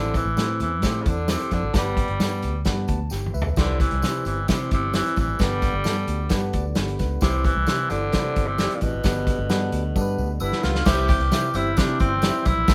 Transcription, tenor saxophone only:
Already playing: D3
0.17 E3
0.62 E3
0.86 C3
1.02 C#3
1.08 D3
1.30 C3
1.53 D3
1.77 G3
3.59 D3
3.81 E3
4.26 E3
4.49 C3
4.73 C3
4.95 E3
5.20 E3
5.41 G3
7.22 C3
7.45 E3
7.90 D3
8.47 C3
8.75 A#2
8.82 B2
10.42 E4
10.63 F4
10.86 G4
11.09 G4
11.56 E4
11.78 D4
12.00 C4
12.47 E4

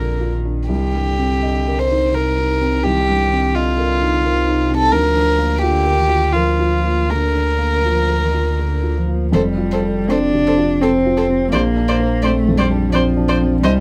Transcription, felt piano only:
Already playing: A#1 F2 D4 F4 A#4
0.20 F4
0.45 D4
0.69 C2
0.95 G2
1.19 C4
1.42 D#5
1.67 A#4
1.91 D#4
2.14 A#4
2.38 D#4
2.61 C4
2.85 C2
3.09 G2
3.32 C4
3.55 D#5
3.78 A#4
4.02 D#4
4.24 A#4
4.47 D#4
4.71 C4
4.92 D2
5.15 D3
5.38 A#3
5.63 F4
5.85 A#4
6.09 F4
6.34 A#4
6.59 F4
6.84 A#3
7.09 D2
7.35 D3
7.59 A#3
7.85 F4
8.09 A#4
8.34 F4
8.59 A#4
8.83 F4
9.07 A#3
9.32 F2
9.57 F4
9.83 A4
10.08 C4
10.34 C3
10.57 F4
10.82 C4
11.06 F4
11.29 C4
11.53 A#1
11.77 D4
12.00 C5
12.24 C4
12.48 F2
12.71 D4
12.94 C4
13.17 D4
13.41 C4
13.63 C2

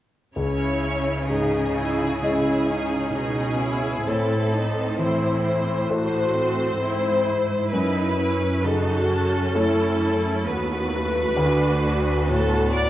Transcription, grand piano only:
0.36 C#2
1.30 G#2
2.23 G#3 E4 D#5
4.07 A2
4.98 E3
5.90 E4 A4 C5
7.73 F#2
8.63 C#3
9.55 A3 E4 C#5
11.37 D2
12.29 A2

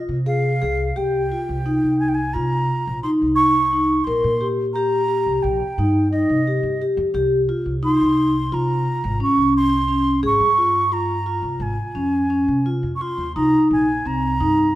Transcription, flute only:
0.27 F5
0.97 G5
2.00 G#5
2.08 G5
2.14 G#5
2.33 A#5
3.03 C6
3.35 C#6
4.04 C6
4.73 A#5
5.42 G5
6.11 D#5
7.84 C6
8.54 A#5
9.23 C#6
9.57 C6
10.26 C#6
10.93 A#5
11.62 G#5
12.96 C#6
13.01 C6
13.36 A#5
13.72 G#5
14.07 A#5

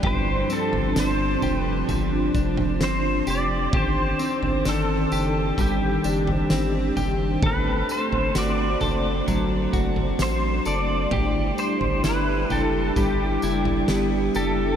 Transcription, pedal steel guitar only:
0.06 C5
0.53 A4
1.00 C5
1.59 B4
2.83 C5
3.30 D5
3.76 C5
4.69 A4
5.61 G4
7.46 B4
7.91 C5
8.38 D5
10.22 C5
10.67 D5
11.59 C5
12.04 B4
12.52 A4
12.97 G4
14.36 A4

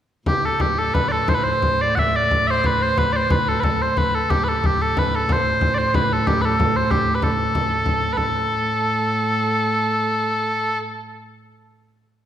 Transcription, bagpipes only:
0.27 G4
0.46 A4
0.61 G4
0.79 A4
0.94 B4
1.08 A4 D5
1.29 C5
1.34 B4
1.43 C5
1.82 D5
1.95 E5 F#5
2.16 D5
2.47 C5 E5
2.66 B4
2.82 C5
2.98 B4
3.13 C5 D5
3.31 B4
3.49 A4
3.60 A4 B4
3.82 C5
3.97 B4
4.15 A4
4.30 G4
4.44 B4
4.49 A4
4.66 G4
4.82 A4
4.99 B4
5.15 A4
5.32 C5
5.75 C5 D5
5.95 B4
6.13 A4
6.27 G4
6.42 A4 B4
6.76 C5
6.91 G4
7.15 B4
7.23 A4
8.13 B4
8.17 A4

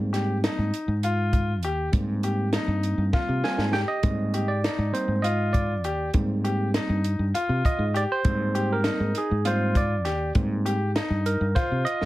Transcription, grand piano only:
0.13 G4
0.44 D#4
1.04 F4
1.64 G4
2.24 G4
2.54 D#4
3.13 F4
3.73 G4
4.34 G4
4.64 D#4
5.24 F4
5.85 G4
6.44 G4
6.74 D#4
7.34 F4
7.94 G4
8.55 G4
8.84 D#4
9.45 F4
10.05 G4
10.66 G4
10.96 D#4
11.56 F4

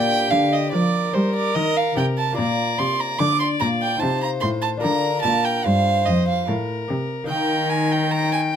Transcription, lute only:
Already playing: A#2 A#3 D4 D5
0.30 D3
0.72 F3
1.13 G3
1.55 D#3
1.95 C3
2.32 A#3 F4 D5
2.37 A#2
2.78 C3
3.19 D3
3.60 A#2
3.97 D#4 F4 C5
4.01 C3
4.41 A2
4.77 D4 F4 A#4
4.82 D3
5.22 A#2
5.64 G2
6.05 F2
6.47 A2
6.88 C3
7.24 A#3 D#4 A#4
7.28 D#3

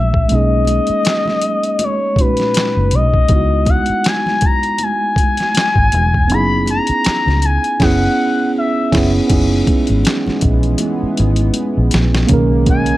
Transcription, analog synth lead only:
Already playing: E5
0.33 D#5
1.84 C#5
2.20 B4
2.95 D#5
3.69 F#5
4.07 G#5
4.45 A#5
4.83 G#5
6.34 B5
6.70 A#5
7.45 G#5
7.82 F#5
8.58 E5
12.70 G#5

